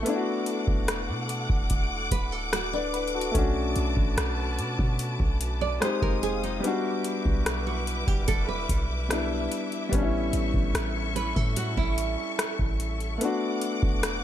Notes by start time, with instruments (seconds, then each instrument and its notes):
Already playing: string section E4 A4
0.02 grand piano A3 B3, string section F#5 D6, closed hi-hat
0.07 grand piano D4 E4
0.16 grand piano F#4
0.46 closed hi-hat
0.68 808-style bass E1, kick
0.88 cross-stick, closed hi-hat
1.09 808-style bass B2
1.29 closed hi-hat
1.50 808-style bass E1, kick
1.70 kick, closed hi-hat
2.11 808-style bass D1, nylon-string guitar B4, kick, closed hi-hat
2.32 nylon-string guitar A4
2.53 nylon-string guitar F#4, cross-stick, closed hi-hat
2.73 nylon-string guitar D4, grand piano B4 D5
2.94 grand piano B4, closed hi-hat
3.08 closed hi-hat
3.14 grand piano F#4 A4
3.21 closed hi-hat
3.31 808-style bass B1, grand piano A3 C#4, string section F#4 B4 A5, kick, closed hi-hat
3.36 grand piano D4 F#4
3.76 808-style bass B1, closed hi-hat
3.97 808-style bass A1, kick
4.17 808-style bass B1, cross-stick, closed hi-hat
4.58 808-style bass B2, closed hi-hat
4.79 808-style bass B2, kick
4.99 closed hi-hat
5.20 808-style bass B1, kick
5.41 closed hi-hat
5.61 nylon-string guitar D5
5.80 grand piano G#3 C4 D#4 G4, string section F4 C5 F5 D#6, nylon-string guitar C5, cross-stick, closed hi-hat
6.02 808-style bass F1, nylon-string guitar A#4, kick
6.23 nylon-string guitar G#4, closed hi-hat
6.44 nylon-string guitar D#4, closed hi-hat
6.60 grand piano G3 B3, string section E4 B4 E5 D6, closed hi-hat
6.65 grand piano D4 F#4
7.04 closed hi-hat
7.26 808-style bass B1, kick
7.46 cross-stick, closed hi-hat
7.67 nylon-string guitar F#4
7.87 closed hi-hat
8.08 808-style bass E1, nylon-string guitar G4, kick
8.28 nylon-string guitar A4, kick, closed hi-hat
8.48 nylon-string guitar B4
8.69 808-style bass B1, kick, closed hi-hat
9.09 grand piano G3 B3 D4 E4, cross-stick, closed hi-hat
9.52 closed hi-hat
9.72 closed hi-hat
9.89 808-style bass A1, grand piano G3 B3, string section A4 C#6, kick, closed hi-hat
9.94 grand piano C#4 D4
10.02 grand piano E4
10.33 808-style bass A1, closed hi-hat
10.54 808-style bass A1, kick
10.74 808-style bass A1, cross-stick, closed hi-hat
11.16 nylon-string guitar B4, closed hi-hat
11.36 808-style bass A2, nylon-string guitar A4, kick
11.56 nylon-string guitar F#4, closed hi-hat
11.77 808-style bass A1, nylon-string guitar E4, kick
11.98 closed hi-hat
12.39 cross-stick, closed hi-hat
12.59 808-style bass A1, kick
12.80 closed hi-hat
13.00 closed hi-hat
13.18 grand piano A3 B3, string section F#5 D6, closed hi-hat
13.23 grand piano D4 F#4
13.61 closed hi-hat
13.83 808-style bass E1, kick
14.03 cross-stick, closed hi-hat